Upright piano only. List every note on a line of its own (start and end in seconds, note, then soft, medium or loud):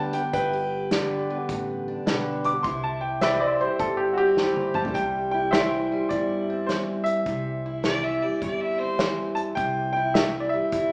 0.00 0.14 A5 medium
0.14 0.32 G5 medium
0.33 2.03 B4 medium
0.33 2.03 G5 loud
2.45 2.64 D6 loud
2.63 2.82 C6 medium
2.84 3.02 A5 medium
3.01 3.21 G5 medium
3.22 3.41 E5 medium
3.40 3.60 D5 medium
3.61 3.79 C5 medium
3.79 3.98 A4 medium
3.97 4.16 G4 medium
4.13 4.19 F#4 medium
4.18 4.93 G4 loud
4.75 4.96 A5 loud
4.94 5.30 G5 loud
5.31 5.53 G5 loud
5.51 6.12 E5 medium
6.09 6.70 D5 medium
6.66 6.75 C5 medium
7.04 8.17 E5 medium
9.35 9.40 A5 loud
9.55 9.91 G5 loud
9.93 10.15 G5 loud
10.14 10.44 E5 medium
10.40 10.51 D5 medium
10.49 10.92 E5 medium